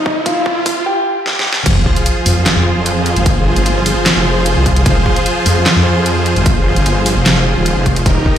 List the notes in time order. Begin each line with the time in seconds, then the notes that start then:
Already playing: F2 C3 F3 D#4 F4 D#5, riser
0.06 kick
0.26 F4 F5, kick, closed hi-hat
0.46 kick
0.66 kick, open hi-hat
0.86 G4 G5
1.26 snare
1.39 snare
1.53 snare
1.66 F1 F3 F4 G#4 C5, kick, closed hi-hat, crash, sub drop
1.86 kick
1.96 closed hi-hat
2.06 closed hi-hat
2.26 F2, open hi-hat
2.46 snare, clap, closed hi-hat
2.56 F2
2.86 closed hi-hat
3.06 closed hi-hat
3.16 G1, closed hi-hat
3.26 kick, closed hi-hat
3.56 G1, closed hi-hat
3.66 closed hi-hat
3.86 open hi-hat
4.06 snare, clap, closed hi-hat
4.16 F1
4.46 closed hi-hat
4.56 C2
4.66 kick, closed hi-hat
4.76 closed hi-hat
4.86 F1, kick, closed hi-hat
5.06 kick
5.16 closed hi-hat
5.26 closed hi-hat
5.46 F2, open hi-hat
5.66 snare, clap, closed hi-hat
5.76 F2
6.06 closed hi-hat
6.26 closed hi-hat
6.36 G1, closed hi-hat
6.46 kick, closed hi-hat
6.76 G1, closed hi-hat
6.86 closed hi-hat
7.06 open hi-hat
7.16 F1
7.26 snare, clap, closed hi-hat
7.56 D#1
7.66 closed hi-hat
7.76 F1
7.86 kick, closed hi-hat
7.96 closed hi-hat
8.06 D#1 D#3 D#4 G4 A#4, kick, closed hi-hat
8.26 kick